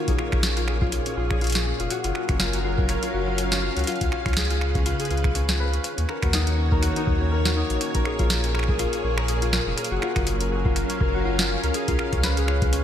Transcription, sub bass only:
0.08 0.15 A#1 loud
0.32 1.00 A#1 loud
1.17 1.73 A#1 medium
1.80 1.88 F1 medium
2.05 2.12 F#1 loud
2.29 2.96 F#1 medium
3.14 3.70 F#1 medium
3.77 3.84 C#2 medium
4.01 4.09 C#2 loud
4.26 4.93 C#2 loud
5.10 5.79 C#2 medium
5.98 6.06 D#2 loud
6.23 6.90 D#2 loud
7.07 7.64 D#2 medium
7.70 7.78 A#1 medium
7.95 8.02 A#1 loud
8.19 8.87 A#1 loud
9.04 9.60 A#1 medium
9.67 9.74 F1 medium
9.91 9.99 F#1 loud
10.16 10.83 F#1 loud
11.01 11.57 F#1 medium
11.64 11.71 C#2 medium
11.88 11.96 C#2 loud
12.13 12.80 C#2 loud

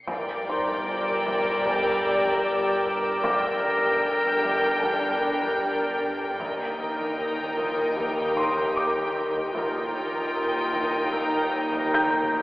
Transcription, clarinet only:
0.48 0.89 D#4 medium
0.87 1.66 F4 medium
1.65 3.23 G4 loud
3.24 4.84 A#4 loud
4.82 6.40 D4 medium
6.78 7.58 D#4 medium
7.57 7.96 F4 medium
7.97 9.55 G4 medium
9.54 11.13 F4 loud
11.12 12.42 D#4 loud

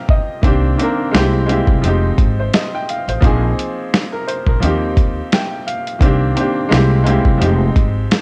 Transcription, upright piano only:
0.00 0.15 F3 medium
0.00 0.15 A#3 medium
0.00 0.16 C4 medium
0.00 0.17 D#4 medium
0.00 0.18 G4 medium
0.00 0.44 F5 medium
0.00 0.44 G5 medium
0.00 0.44 A#5 medium
0.10 0.41 D#5 medium
0.42 0.66 D#3 medium
0.42 0.67 A#3 medium
0.42 0.68 C4 medium
0.46 0.68 D4 medium
0.46 0.69 G4 medium
0.76 1.12 D#3 medium
0.76 1.11 A#3 medium
0.76 1.13 C4 medium
0.81 1.14 D4 medium
0.81 1.15 A#4 medium
1.11 1.41 G#3 medium
1.11 1.41 A#3 medium
1.11 1.42 C4 medium
1.16 1.43 E4 medium
1.16 1.44 G4 loud
1.46 1.81 G#3 medium
1.46 1.82 A#3 medium
1.46 1.83 C4 medium
1.50 1.84 E4 medium
1.50 1.84 G4 medium
1.81 2.94 F3 medium
1.81 2.95 G#3 medium
1.81 2.96 C4 medium
1.86 2.97 D#4 medium
1.86 2.97 G4 medium
2.39 2.53 C5 medium
2.54 2.72 D#5 medium
2.74 2.87 G5 medium
2.90 3.07 F5 medium
3.09 3.41 C5 medium
3.20 3.45 F3 medium
3.20 3.46 A#3 medium
3.20 3.46 C4 medium
3.25 3.47 D#4 medium
3.25 3.48 G#4 medium
4.12 4.26 A#4 medium
4.27 4.46 C5 medium
4.48 4.80 A#4 medium
4.60 5.73 F3 medium
4.60 5.74 A#3 medium
4.60 5.75 C4 medium
4.64 5.75 D#4 medium
4.64 5.76 G4 medium
5.33 5.64 G5 medium
5.67 5.99 F5 medium
5.99 6.24 D#3 medium
5.99 6.25 A#3 medium
5.99 6.25 C4 medium
6.03 6.26 D4 medium
6.03 6.27 G4 medium
6.34 6.70 D#3 medium
6.34 6.69 A#3 medium
6.34 6.70 C4 medium
6.39 6.72 D4 medium
6.39 6.73 G4 medium
6.69 6.99 G#3 medium
6.69 6.99 A#3 medium
6.69 7.00 C4 medium
6.73 7.01 E4 medium
6.73 7.02 G4 medium
7.04 7.40 G#3 medium
7.04 7.40 A#3 medium
7.04 7.40 C4 medium
7.08 7.42 E4 medium
7.08 7.42 G4 medium
7.38 8.21 F3 medium
7.38 7.47 G3 medium
7.38 8.21 C4 medium
7.43 8.21 G#3 medium
7.43 8.21 D#4 medium
7.43 8.21 G4 medium

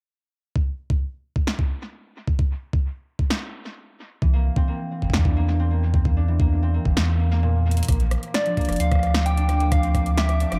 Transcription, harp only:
4.22 5.24 E3 medium
4.33 4.67 A#3 medium
4.56 5.59 C4 medium
4.68 5.36 A#3 medium
5.14 6.16 D4 medium
5.25 6.27 E3 medium
5.37 5.71 A#3 loud
5.59 6.62 C4 medium
5.71 6.39 A#3 medium
6.17 8.34 D4 medium
6.28 7.48 E3 medium
6.40 6.74 A#3 medium
6.63 8.80 C4 loud
6.74 7.19 A#3 medium
7.20 7.31 A#3 medium
7.31 7.65 A#3 medium
7.43 7.93 A#2 loud
7.66 7.77 A#3 medium
7.77 7.88 A#3 medium
7.89 8.57 A#3 medium
8.34 9.37 D4 medium
8.46 9.48 F3 medium
8.57 8.91 A#3 loud
8.80 9.83 C4 medium
8.92 9.60 A#3 medium
9.37 10.40 D4 medium
9.49 10.51 F3 medium
9.60 9.94 A#3 loud
9.83 10.59 C4 loud
9.95 10.59 A#3 medium
10.40 10.59 D4 medium
10.52 10.59 F3 medium

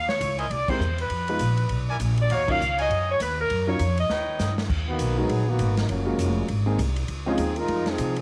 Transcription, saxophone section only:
0.09 0.37 C#5 loud
0.39 0.50 D#5 medium
0.51 0.69 D5 loud
0.70 0.99 C5 medium
1.01 1.86 B4 medium
2.22 2.31 D5 medium
2.34 2.50 C#5 loud
2.51 2.79 F5 loud
2.81 3.08 D#5 medium
3.11 3.22 C#5 loud
3.22 3.38 B4 medium
3.41 3.67 A#4 medium
3.70 3.97 C#5 medium
4.00 4.55 D#5 medium

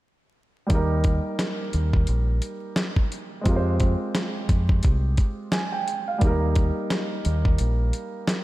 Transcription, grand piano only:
0.66 3.40 G3 medium
0.66 3.41 A#3 medium
0.71 3.42 D#4 medium
0.71 3.43 G4 medium
0.75 3.44 A#4 medium
3.41 6.16 G#3 medium
3.41 6.17 C4 medium
3.46 6.18 F4 medium
3.46 6.19 G4 medium
3.50 3.55 A#4 medium
3.56 6.23 C5 medium
5.52 5.71 G#5 medium
5.72 6.05 G5 medium
6.08 6.40 F5 medium
6.18 8.44 G3 medium
6.18 8.44 A#3 medium
6.23 8.44 D#4 medium
6.23 8.44 G4 medium
6.27 8.44 A#4 medium

